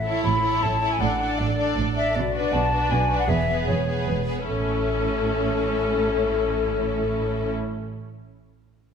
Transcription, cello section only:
Already playing: A2
0.24 A2
0.62 A2
1.00 A2
1.40 A2
1.77 A2
2.16 B2
2.53 B2
2.91 B2
3.28 E2
3.68 E2
4.07 E2
4.48 A2

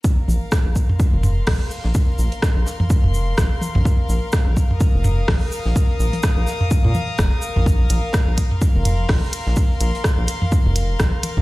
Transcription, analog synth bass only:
0.28 A#1
0.66 A#1
1.13 F1
1.47 A#1
1.85 A#1
2.19 A#1
2.56 A#1
3.04 F1
3.38 A#1
3.75 A#1
4.09 A#1
4.47 A#1
4.94 F1
5.28 A#1
5.66 A#1
6.00 A#1
6.37 A#1
6.85 A#2
7.19 F1
7.56 A#1
7.90 A#1
8.28 A#1
8.75 F1
9.09 A#1
9.47 A#1
9.81 A#1
10.18 A#1
10.66 F1
11.00 A#1
11.37 A#1

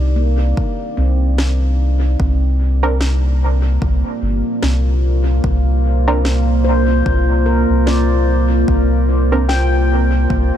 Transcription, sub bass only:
Already playing: C2
0.98 C2
2.20 C2
3.82 C2
4.22 G1
4.63 C2
5.44 C2
7.06 C2
7.69 C2
8.68 C2
10.30 C2

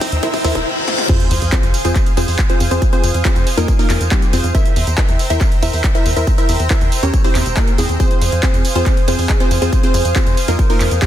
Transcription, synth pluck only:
0.23 E4 A#4 C5 E5
0.45 E4 A#4 C5 E5
1.09 C4 F4 G#4 C5
1.52 C4 F4 G#4 C5
1.85 C4 F4 G#4 C5
2.17 C4 F4 G#4 C5
2.50 C4 F4 G#4 C5
2.71 C4 F4 G#4 C5
2.93 C4 F4 G#4 C5
3.25 C4 F4 G#4 C5
3.57 A#3 D#4 F4 A#4
3.79 A#3 D#4 F4 A#4
4.11 G3 C4 D#4 G4
4.33 C4 F4 G#4 C5
4.55 E4 A#4 C5 E5
4.98 E4 A#4 C5 E5
5.30 E4 A#4 C5 E5
5.63 E4 A#4 C5 E5
5.95 E4 A#4 C5 E5
6.16 E4 A#4 C5 E5
6.38 E4 A#4 C5 E5
6.70 E4 A#4 C5 E5
7.03 C#4 G4 A#4 C#5
7.24 C4 E4 G4 C5
7.57 A#3 E4 G4 A#4
7.78 G#3 C4 E4 G#4
8.00 C4 F4 G#4 C5
8.43 C4 F4 G#4 C5
8.75 C4 F4 G#4 C5
9.08 C4 F4 G#4 C5
9.40 C4 F4 G#4 C5
9.62 C4 F4 G#4 C5
9.83 C4 F4 G#4 C5
10.16 C4 F4 G#4 C5
10.48 A#3 D#4 F4 A#4
10.70 A#3 D#4 F4 A#4
11.02 G3 C4 D#4 G4

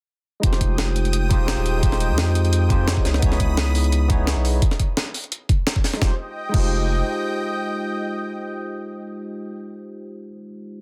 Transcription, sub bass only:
0.43 F1
1.40 F1
1.57 D#1
2.10 F2
3.05 C#2
3.23 C#2
4.19 C#2
4.36 B1
6.02 F1
6.54 F1

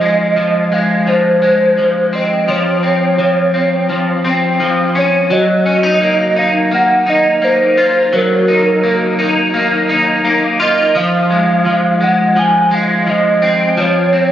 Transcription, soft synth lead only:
Already playing: D#5
0.74 F5
1.08 C5
2.15 D#5
2.50 C#5
4.97 C#5
5.32 D#5
6.39 F5
6.74 F#5
7.10 D#5
7.44 C5
8.16 A#4
10.62 D#5
10.97 F5
12.04 F#5
12.39 G#5
12.75 F5
13.10 D#5
13.80 C#5

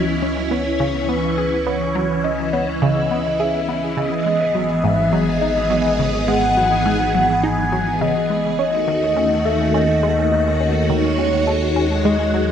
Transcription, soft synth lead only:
Already playing: D#5
0.51 C#5
1.08 B4
1.66 C#5
2.24 D#5
2.53 C#5
2.82 D#5
3.39 E5
3.97 D#5
4.83 E5
5.12 D#5
6.28 F#5
7.43 G#5
8.01 D#5
8.59 D#5
9.45 E5
9.74 D#5
10.90 C#5
12.05 D#5

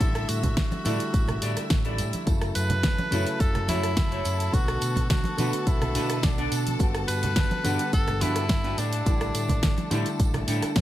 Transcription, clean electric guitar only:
Already playing: E4 G4 A4 D5
0.57 muted clean electric guitar stroke
0.71 muted clean electric guitar stroke
0.85 E4 G4 A4 D5
1.13 muted clean electric guitar stroke
1.42 E4 G4 A4 D5
1.85 E4 G4 A4 D5
2.98 muted clean electric guitar stroke
3.12 E4 F#4 A4 C#5
3.40 muted clean electric guitar stroke
3.68 E4 F#4 A4 C#5
4.11 E4 F#4 A4 C#5
5.25 muted clean electric guitar stroke
5.38 D4 F#4 A4 B4
5.67 muted clean electric guitar stroke
5.95 D4 F#4 A4 B4
6.38 D4 F#4 A4 D5
7.51 muted clean electric guitar stroke
7.65 D4 F#4 G4 B4
8.21 D4 F#4 G4 B4
8.64 D4 F#4 G4 B4
8.78 D4 E4 G4 A4
9.63 muted clean electric guitar stroke
9.78 muted clean electric guitar stroke
9.91 D4 E4 G4 A4
10.19 muted clean electric guitar stroke
10.47 D4 E4 G4 A4

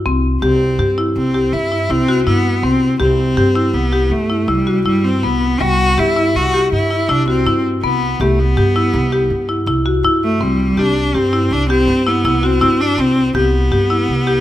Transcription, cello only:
0.42 C4
1.17 C4
1.53 E4
1.91 C4
2.27 B3
2.64 C4
3.01 C4
3.74 B3
4.11 A3
4.49 G3
4.86 G3
5.04 C4
5.24 B3
5.61 F#4
5.99 E4
6.36 F#4
6.73 E4
7.10 D4
7.29 C4
7.83 B3
8.21 A3
8.39 B3
10.24 A3
10.43 G3
10.79 D4
11.16 C4
11.53 D4
11.70 C4
12.07 B3
12.45 C4
12.81 D4
13.00 C4
13.37 B3

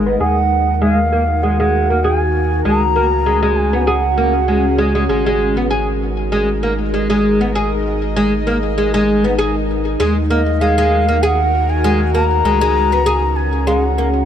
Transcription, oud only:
0.06 B3
0.20 G#4
0.82 G#3
1.12 A#3
1.43 G#3
1.60 G#3
1.90 A#3
2.04 G#4
2.65 G#3
2.96 A#3
3.26 G#3
3.43 G#3
3.73 B3
3.87 G#4
4.18 A#3
4.48 G#3
4.78 G#3
4.95 G#3
5.09 G#3
5.26 G#3
5.57 B3
5.71 G#4
6.32 G#3
6.63 A#3
6.94 G#3
7.10 G#3
7.41 B3
7.55 G#4
8.16 G#3
8.47 A#3
8.78 G#3
8.94 G#3
9.24 B3
9.39 G#4
10.00 G#3
10.30 A#3
10.61 G#3
10.78 G#3
11.09 A#3
11.23 G#4
11.84 G#3
12.15 A#3
12.45 G#3
12.61 G#3
12.92 B3
13.06 G#4
13.67 G#3
13.98 A#3

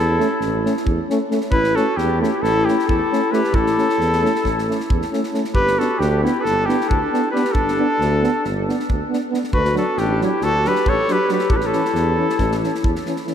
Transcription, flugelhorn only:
Already playing: A4
1.51 B4
1.76 A4
1.97 G4
2.21 G4
2.42 A4
2.65 G4
2.87 A4
3.32 B4
3.55 A4
5.55 B4
5.79 A4
5.99 G4
6.24 G4
6.39 A4 B4
6.66 G4
6.89 A4
7.31 B4
7.52 A4
9.54 B4
9.78 A4
9.99 G4
10.24 G4
10.43 A4
10.67 B4
10.89 C#5
11.12 B4
11.32 B4
11.51 A4
11.56 B4
11.66 A4

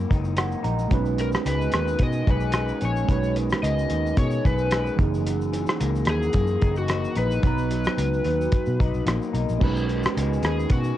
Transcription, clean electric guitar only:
Already playing: F#2 E3 A#3
0.10 D#4
0.37 A#3
0.63 D#4
0.90 B2
1.18 D#3
1.45 G#3
1.72 D#3
2.00 G#3
2.27 C#4
2.55 G#3
2.81 C#4
3.09 B2
3.36 D#3
3.64 G#3
3.90 D#3
4.17 G#3
4.44 C#4
4.72 G#3
5.00 F#2
5.26 F#2
5.53 E3
5.80 A#3
6.08 E3
6.35 A#3
6.62 D#4
7.16 D#4
7.43 B2
7.70 F#3
8.25 F#3
8.80 D#4
9.06 A#3
9.34 D#4
9.61 B2
9.88 D#3
10.15 G#3
10.43 D#3
10.70 G#3

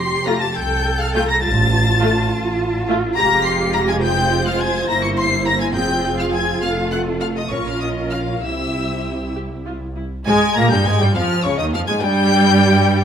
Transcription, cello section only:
Already playing: G4
0.55 A4
1.43 F4
3.17 G4
4.03 F4
4.89 E4
5.75 F4
7.51 F4
8.43 E4
10.27 G#3
10.57 A#3
10.72 G3
10.86 G#3
11.00 G3
11.14 F3
11.45 C#3
11.59 D#3
11.73 F3
11.89 G#3
12.02 G3

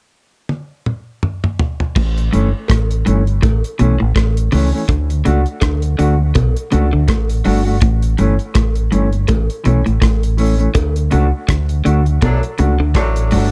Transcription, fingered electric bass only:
1.97 A1
2.35 G1
2.70 A1
3.08 G1
3.44 A1
3.81 B1
4.02 A1
4.17 A1
4.54 C#2
4.89 D2
5.27 C#2
5.63 D2
6.00 D2
6.36 B1
6.74 C#2
6.94 D2
7.09 A1
7.47 G1
7.83 A1
8.20 G1
8.56 A1
8.93 G1
9.30 A1
9.66 B1
9.87 A1
10.03 A1
10.76 D2
11.14 C#2
11.49 D2
11.87 D2
12.23 B1
12.59 C#2
12.80 D2
12.96 A1
13.33 G1

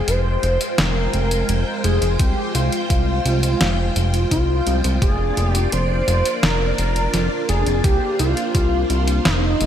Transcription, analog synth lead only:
0.08 C5
0.79 A#4
1.84 G#4
2.20 G4
2.55 F4
4.31 F4
5.02 G#4
5.49 G4
5.73 C5
6.43 A#4
7.49 G#4
7.84 G4
8.20 F4
9.33 D#4

